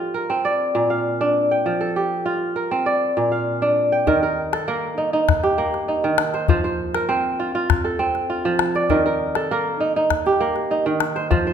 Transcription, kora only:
Already playing: F3 D4 F4 G4 A4
0.14 A#4
0.30 C4
0.45 D5
0.75 A#2
0.90 F5
1.21 D4
1.51 G5
1.66 F3
1.81 A4
1.96 G4
2.26 F4
2.56 A#4
2.71 C4
2.86 D5
3.17 A#2
3.32 F5
3.62 D4
3.92 G5
4.07 D#3 A#4
4.23 A#4
4.53 A4
4.68 A#3 A#4
4.98 D#4
5.13 D#4
5.44 G4
5.58 A#3
5.88 D#4
6.04 D#3
6.34 C5
6.49 F3 C5
6.64 C5
6.95 A#4
7.09 C4 C5
7.39 F4
7.55 F4
7.84 A4
7.99 C4
8.30 F4
8.45 F3
8.75 D5
8.90 D#3 A#4
9.06 A#4
9.36 A4
9.51 A#3 A#4
9.80 D#4
9.96 D#4
10.26 G4
10.40 A#3
10.71 D#4
10.86 D#3
11.16 C5
11.31 F3 C5
11.47 C5

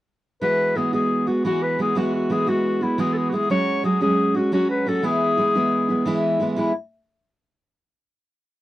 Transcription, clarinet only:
0.42 B4
0.77 G#4
0.93 G#4
1.28 F#4
1.45 F#4
1.63 B4
1.81 G#4
1.98 F#4
2.15 F#4
2.32 G#4
2.49 F#4
2.83 E4
3.00 G#4
3.14 G#4 A4
3.29 F#4
3.34 G#4
3.51 C#5
3.85 G#4
4.02 G#4
4.36 F#4
4.54 F#4
4.70 B4
4.88 A4
5.05 G#4
6.57 E4

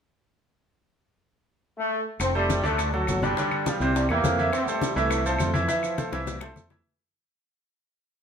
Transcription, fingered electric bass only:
2.20 F1
2.63 D2
3.08 G1
3.80 C2
4.09 E2
4.24 F2
4.96 C2
5.40 F2
6.12 C2
6.55 F2

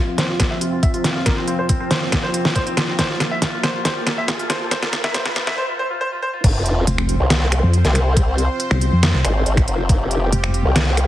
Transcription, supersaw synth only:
Already playing: F3 C4 F4
2.99 A#3
6.44 C4 F4 C5
9.89 G4

